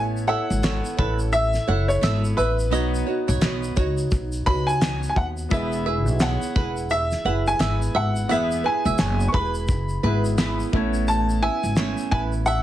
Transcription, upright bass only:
0.00 0.34 A1 medium
0.50 0.79 G#1 medium
0.99 1.56 A1 loud
1.68 1.97 F#1 loud
2.03 2.32 G#1 loud
2.38 2.73 A1 medium
2.73 3.01 B1 loud
3.29 3.40 B1 loud
3.42 3.71 B1 medium
3.77 4.06 C#2 medium
4.12 4.41 B1 loud
4.47 5.04 C#2 medium
5.17 5.45 D#2 medium
5.51 6.07 E1 loud
6.07 6.35 B1 medium
6.56 7.13 E1 loud
7.25 7.54 F#1 medium
7.60 7.89 G#1 medium
7.95 8.29 G#1 medium
8.29 8.58 E1 loud
8.85 8.97 E1 loud
8.99 9.28 F#1 loud
9.34 9.69 E1 medium
9.69 9.97 F#1 loud
10.04 10.61 G#1 loud
10.73 11.47 A1 medium
11.63 11.92 G#1 medium
12.12 12.63 A1 loud

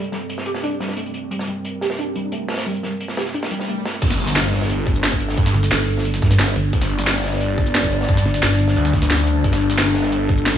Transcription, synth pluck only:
0.12 0.17 G3 medium
0.46 0.54 G4 medium
0.63 0.74 D4 medium
0.80 0.87 G3 medium
0.97 1.08 A3 medium
1.31 1.35 G3 medium
1.48 1.52 G3 medium
1.82 1.89 G4 medium
1.99 2.10 D4 medium
2.16 2.23 G3 medium
2.32 2.44 A3 medium
2.66 2.71 G3 medium
2.83 2.88 G3 medium
3.17 3.25 G4 medium
3.34 3.45 D4 medium
3.51 3.59 G3 medium
3.68 3.79 A3 medium

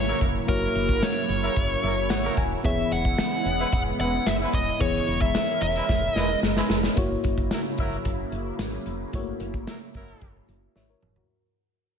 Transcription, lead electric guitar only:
0.00 0.18 C#5 medium
0.49 1.04 A#4 medium
1.03 2.34 C#5 loud
2.66 2.90 E5 loud
2.92 3.72 F#5 loud
3.73 3.81 F#5 loud
4.01 4.28 F#5 loud
4.27 4.34 E5 medium
4.54 4.81 D#5 loud
4.81 5.21 C#5 medium
5.21 5.61 E5 medium
5.62 6.15 E5 medium
6.15 6.39 D#5 medium

